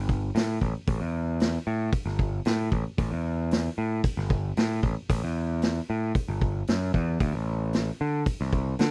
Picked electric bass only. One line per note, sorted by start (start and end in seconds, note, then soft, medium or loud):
0.00 0.30 G1 medium
0.35 0.57 A2 medium
0.61 0.73 A1 medium
0.88 0.99 A1 medium
1.01 1.57 E2 medium
1.67 1.89 A2 medium
2.06 2.40 G1 medium
2.46 2.68 A2 medium
2.72 2.83 A1 medium
2.98 3.10 A1 medium
3.12 3.68 E2 medium
3.78 4.00 A2 medium
4.17 4.51 G1 medium
4.57 4.80 A2 medium
4.83 4.94 A1 medium
5.10 5.21 A1 loud
5.24 5.79 E2 medium
5.90 6.12 A2 medium
6.28 6.62 G1 medium
6.69 6.92 F#2 medium
6.94 7.18 E2 medium
7.21 7.32 D2 loud
7.34 7.90 A1 medium
8.01 8.23 D3 medium
8.41 8.74 C2 medium
8.79 8.91 D3 medium